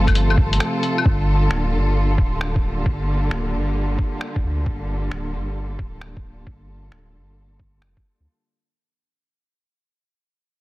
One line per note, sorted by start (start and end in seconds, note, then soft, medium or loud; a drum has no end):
0.00 0.37 G1 medium
0.00 1.05 C3 medium
0.00 1.05 F3 medium
0.00 1.05 A3 medium
0.00 8.27 F4 medium
0.00 8.27 A4 loud
0.07 kick medium
0.07 closed hi-hat soft
0.07 claves medium
0.15 closed hi-hat medium
0.30 claves medium
0.38 0.60 G1 medium
0.38 kick loud
0.53 closed hi-hat medium
0.60 finger snap loud
0.60 closed hi-hat medium
0.83 closed hi-hat soft
0.98 claves medium
1.05 1.50 G1 loud
1.05 8.27 D3 medium
1.05 kick loud
1.42 8.27 G3 medium
1.42 8.27 A#3 medium
1.51 1.75 D1 loud
1.51 finger snap loud
1.73 2.17 G1 medium
2.18 2.85 D1 medium
2.18 kick loud
2.41 finger snap loud
2.56 kick loud
2.86 3.30 G1 medium
2.86 kick loud
3.31 3.55 D1 loud
3.31 finger snap loud
3.54 3.98 G1 medium
3.99 kick loud
4.21 finger snap loud
4.36 kick loud
4.44 4.65 D2 medium
4.66 5.10 G1 loud
4.66 kick loud
5.11 5.36 D1 loud
5.11 finger snap loud
5.34 5.78 G1 medium
5.79 6.46 D1 medium
5.79 kick loud
6.01 finger snap loud
6.17 kick loud
6.47 6.91 G1 medium
6.47 kick loud
6.92 7.16 D1 loud
6.92 finger snap loud
7.14 7.84 G1 medium
7.59 kick loud
7.82 7.96 F1 medium
7.82 finger snap loud
7.97 kick loud
8.20 8.27 D2 medium